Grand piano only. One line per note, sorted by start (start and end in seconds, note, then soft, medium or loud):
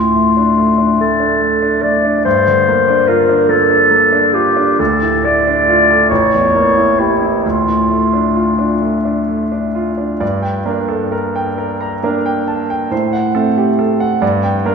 0.00 2.21 D2 soft
0.00 0.29 A2 soft
0.15 0.50 A3 soft
0.37 0.71 D4 soft
0.57 0.92 A3 soft
0.78 1.12 D4 soft
0.99 1.33 A3 soft
1.20 1.54 D4 soft
1.42 1.75 A3 soft
1.62 1.96 D4 soft
1.83 2.17 A3 soft
2.05 2.25 D4 soft
2.26 4.75 G2 soft
2.47 2.80 D3 soft
2.68 3.01 A#3 soft
2.88 3.21 D4 soft
3.08 3.41 F4 soft
3.29 3.62 D4 soft
3.49 3.82 A#3 soft
3.70 4.04 D4 soft
3.91 4.25 A#3 soft
4.12 4.48 D4 soft
4.34 4.70 F4 soft
4.57 4.79 D4 soft
4.79 6.06 D2 soft
5.02 5.37 A2 soft
5.25 5.59 A3 soft
5.47 5.81 D4 soft
5.69 6.02 F4 soft
5.90 6.11 A4 soft
6.11 7.41 A1 soft
6.33 6.68 E2 soft
6.55 6.90 A#3 soft
6.77 7.13 E4 soft
6.99 7.35 G4 soft
7.22 7.44 E4 soft
7.45 10.18 D2 soft
7.68 8.04 A2 soft
7.90 8.26 A3 soft
8.13 8.50 D4 soft
8.35 8.72 F4 soft
8.59 8.96 D4 soft
8.81 9.19 A3 soft
9.05 9.43 D4 soft
9.28 9.66 A3 soft
9.52 9.89 D4 soft
9.75 10.12 F4 soft
9.98 10.21 D4 soft
10.20 10.65 G2 soft
10.20 10.57 D5 soft
10.42 10.79 G5 soft
10.66 11.99 A#3 soft
10.66 11.99 D4 soft
10.66 11.03 A#4 soft
10.88 11.12 A4 soft
11.12 11.49 A#4 soft
11.36 11.72 G5 soft
11.58 11.94 A#4 soft
11.81 12.17 A#5 soft
12.03 12.87 A#3 soft
12.03 12.88 D4 soft
12.03 12.39 A#4 soft
12.26 12.61 G5 soft
12.48 12.70 A5 soft
12.70 12.92 G5 soft
12.91 13.33 A2 soft
12.91 13.26 C5 soft
13.13 13.48 F#5 soft
13.35 14.18 A3 soft
13.35 14.18 C4 soft
13.35 13.70 A4 soft
13.57 13.79 G4 soft
13.79 14.13 A4 soft
14.00 14.22 F#5 soft
14.22 14.64 G2 medium
14.22 14.57 D5 soft
14.43 14.75 G5 soft
14.66 14.75 A#3 soft
14.66 14.75 D4 soft
14.66 14.75 A#4 soft